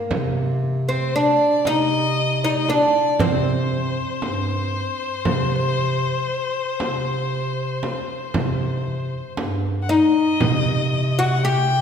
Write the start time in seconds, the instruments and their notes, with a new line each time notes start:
Already playing: oud A#3
0.11 bass clarinet C3, frame drum
0.89 oud C4, violin C5
1.15 oud D4, violin D5
1.65 bass clarinet C3, oud D#4, violin D#5, frame drum
2.43 oud D#4, violin D#5
2.50 violin D5
2.56 violin D#5
2.69 oud D4, violin D5, frame drum
3.19 bass clarinet C3, oud C4, violin C5, frame drum
4.22 bass clarinet G2, frame drum
5.25 bass clarinet C3, frame drum
6.80 bass clarinet C3, frame drum
7.83 frame drum
8.34 bass clarinet C3, frame drum
9.37 bass clarinet G2, frame drum
9.82 violin F#5
9.89 oud D#4, violin D#5
10.40 bass clarinet C3, frame drum, darbuka dum
10.93 darbuka ka
11.18 oud F#4, violin F#5
11.44 oud G4, violin G5